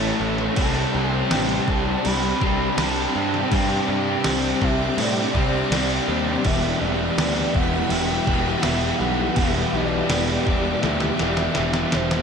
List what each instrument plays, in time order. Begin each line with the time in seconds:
Already playing: picked electric bass A1, distorted electric guitar A2, overdriven electric guitar E3 A3 C#4 A4, twelve-string acoustic guitar E4, string machine A4 E5 C#6, soft synth lead C#5
0.19 picked electric bass A1, overdriven electric guitar A3 C#4 A4
0.38 snare
0.56 picked electric bass C2, overdriven electric guitar C3 G3 C4 D4 G4, string machine G4, soft synth lead A5, kick, crash
0.60 string machine C5 D5
0.94 picked electric bass C2, overdriven electric guitar C4 D4 G4, soft synth lead G5
1.30 picked electric bass A1, distorted electric guitar C3, overdriven electric guitar G3 C4 D4 G4, snare, crash
1.49 snare
1.67 picked electric bass C2, overdriven electric guitar C4 D4 G4, soft synth lead A5, kick
2.04 picked electric bass C2, overdriven electric guitar C3 G3 C4 D4 G4, soft synth lead B5, crash
2.41 picked electric bass C2, distorted electric guitar C3 G3, overdriven electric guitar C4 D4 G4, kick
2.77 picked electric bass C2, distorted electric guitar C3, overdriven electric guitar G3 C4 D4 G4, snare, crash
2.82 soft synth lead A5
3.14 picked electric bass G2, overdriven electric guitar C4 D4 G4
3.34 snare
3.51 picked electric bass G2, overdriven electric guitar C3 G3 C4 D4 G4, soft synth lead G5, string machine D6, kick, crash
3.88 picked electric bass G2, overdriven electric guitar C4 D4 G4
4.24 picked electric bass C2, distorted electric guitar C3, overdriven electric guitar G3 C4 D4 G4, snare, crash
4.60 picked electric bass C2, overdriven electric guitar C4 D4 G4, soft synth lead E5, kick
4.96 picked electric bass A2, overdriven electric guitar C3 G3 C4 D4 G4, crash
5.00 soft synth lead D5
5.33 picked electric bass C2, distorted electric guitar G3, overdriven electric guitar C4 D4 G4, kick
5.39 distorted electric guitar C3
5.70 picked electric bass C2, distorted electric guitar C3, overdriven electric guitar G3 C4 D4 G4, snare, crash
5.75 distorted electric guitar C4
6.07 picked electric bass D#2, overdriven electric guitar C4 D4 G4
6.43 picked electric bass E1, overdriven electric guitar E2 B2 E3 G3 B3 G4, string machine G4 E5 B5, soft synth lead E5, kick, crash
6.79 picked electric bass E1, overdriven electric guitar G3 B3 G4, soft synth lead D5
6.83 overdriven electric guitar E3
7.16 picked electric bass D2, distorted electric guitar E2 B2, overdriven electric guitar E3 G3 B3 G4, snare, crash
7.36 snare
7.53 picked electric bass E1, overdriven electric guitar E3 G3 B3 G4, twelve-string acoustic guitar E4, soft synth lead F#5, kick
7.88 picked electric bass E1, overdriven electric guitar E2 B2 E3, soft synth lead G5, crash
7.93 overdriven electric guitar G3 B3 G4
8.27 picked electric bass E1, distorted electric guitar B2, overdriven electric guitar E3 G3 B3 G4, twelve-string acoustic guitar E4, kick
8.31 distorted electric guitar E2
8.61 picked electric bass E1, distorted electric guitar E2, overdriven electric guitar E3 G3, soft synth lead E5, snare, crash
8.66 distorted electric guitar B2, overdriven electric guitar B3 G4
8.97 picked electric bass B1, soft synth lead F#5
9.01 overdriven electric guitar E3 G3 B3 G4
9.36 picked electric bass E1, overdriven electric guitar E2 B2 E3 G3 B3 G4, soft synth lead E5, string machine E5 D6, kick, crash
9.71 picked electric bass B1, overdriven electric guitar B3 G4, soft synth lead D5
9.76 overdriven electric guitar E3 G3
10.09 picked electric bass E1, distorted electric guitar E2 B2, overdriven electric guitar E3 G3 B3 G4, snare, crash
10.28 snare
10.44 picked electric bass E1, overdriven electric guitar G3 B3 G4, twelve-string acoustic guitar D4, soft synth lead D5, kick
10.49 overdriven electric guitar E3
10.81 picked electric bass D2, overdriven electric guitar E2 B2 E3 G3, soft synth lead E5, snare
10.85 overdriven electric guitar B3 G4
11.00 snare
11.17 picked electric bass E1, overdriven electric guitar B3 G4, twelve-string acoustic guitar D4, snare
11.22 distorted electric guitar E2 B2, overdriven electric guitar E3 G3
11.37 snare
11.55 picked electric bass E1, distorted electric guitar E2 B2, overdriven electric guitar E3 G3 B3, snare
11.59 overdriven electric guitar G4
11.73 snare
11.91 picked electric bass E1, overdriven electric guitar E3 G3 B3 G4, soft synth lead C5, snare
12.11 snare